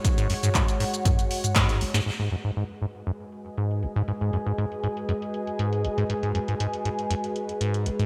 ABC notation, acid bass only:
X:1
M:4/4
L:1/16
Q:1/4=119
K:G#m
V:1 name="Acid bass" clef=bass
G,, G,, F,, G,, G,, z G,, z F,, z3 G,,2 G,,, G,, | G,, G,, F,, G,, G,, z G,, z F,, z3 G,,2 G,,, G,, | G,, G,, F,, G,, G,, z G,, z F,, z3 G,,2 G,,, G,, | G,, G,, F,, G,, G,, z G,, z F,, z3 G,,2 G,,, G,, |]